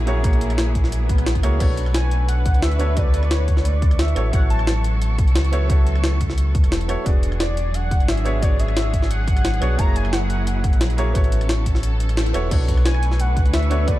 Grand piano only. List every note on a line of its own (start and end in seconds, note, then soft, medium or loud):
0.00 0.06 A#3 medium
0.00 0.07 E4 medium
0.00 0.07 F#4 medium
0.00 0.07 G#4 medium
0.00 0.08 C#5 loud
0.06 0.21 A#3 medium
0.06 0.22 E4 medium
0.06 0.22 F#4 medium
0.06 0.22 G#4 medium
0.06 0.23 C#5 loud
0.22 1.41 A#3 medium
0.22 1.41 E4 medium
0.22 1.42 F#4 medium
0.22 1.42 G#4 medium
0.22 1.42 C#5 loud
1.43 1.58 A#3 medium
1.43 1.58 E4 medium
1.43 1.59 F#4 medium
1.43 1.59 G#4 medium
1.43 1.59 C#5 loud
1.59 2.77 B3 medium
1.59 2.77 D4 medium
1.59 2.78 F#4 medium
1.59 2.78 A4 medium
1.59 2.79 C#5 loud
2.79 2.94 B3 medium
2.79 2.95 D4 medium
2.79 2.95 F#4 medium
2.79 2.95 A4 medium
2.79 2.95 C#5 loud
2.95 4.13 B3 medium
2.95 4.14 D4 medium
2.95 4.14 F#4 medium
2.95 4.15 A4 medium
2.95 4.15 B4 loud
4.15 4.30 B3 loud
4.15 4.31 E4 medium
4.15 4.31 F#4 medium
4.15 4.31 A4 medium
4.15 4.32 C#5 loud
4.32 5.50 B3 medium
4.32 5.50 E4 medium
4.32 5.51 F#4 medium
4.32 5.51 A4 medium
4.32 5.51 C#5 loud
5.52 5.66 B3 medium
5.52 5.67 E4 medium
5.52 5.68 F#4 medium
5.52 5.68 A4 medium
5.52 5.68 C#5 loud
5.68 6.86 B3 medium
5.68 6.87 E4 medium
5.68 6.87 F#4 medium
5.68 6.87 A4 medium
5.68 6.88 C#5 loud
6.88 7.03 B3 medium
6.88 7.04 E4 medium
6.88 7.04 F#4 medium
6.88 7.04 A4 medium
6.88 7.04 C#5 loud
7.04 8.22 B3 medium
7.04 8.23 D4 medium
7.04 8.23 F#4 medium
7.04 8.24 G#4 medium
7.04 8.24 D5 loud
8.24 8.39 B3 medium
8.24 8.40 D4 medium
8.24 8.40 F#4 medium
8.24 8.41 G#4 medium
8.24 8.41 C#5 loud
8.41 9.59 B3 medium
8.41 9.59 D4 medium
8.41 9.60 F#4 medium
8.41 9.60 G#4 medium
8.41 9.61 C#5 loud
9.61 9.76 B3 medium
9.61 9.77 D4 medium
9.61 9.77 F#4 medium
9.61 9.77 G#4 medium
9.61 9.77 C#5 loud
9.77 10.95 A#3 medium
9.77 10.96 E4 medium
9.77 10.96 F#4 medium
9.77 10.96 G#4 medium
9.77 10.97 C#5 loud
10.97 11.13 A#3 medium
10.97 11.13 E4 medium
10.97 11.13 F#4 medium
10.97 11.13 G#4 medium
10.97 11.14 C#5 loud
11.13 12.31 B3 medium
11.13 12.32 E4 medium
11.13 12.32 F#4 medium
11.13 12.33 A4 medium
11.13 12.33 C#5 loud
12.33 12.48 B3 medium
12.33 12.49 E4 medium
12.33 12.49 F#4 medium
12.33 12.50 A4 medium
12.33 12.50 C#5 loud
12.50 13.68 B3 medium
12.50 13.68 D4 medium
12.50 13.69 F#4 medium
12.50 13.69 A4 medium
12.50 13.70 C#5 medium
13.70 13.84 B3 loud
13.70 13.85 D4 medium
13.70 13.86 F#4 medium
13.70 13.86 A4 medium
13.70 13.86 C#5 loud
13.86 13.99 B3 medium
13.86 13.99 D4 medium
13.86 13.99 F#4 medium
13.86 13.99 A4 medium
13.86 13.99 B4 loud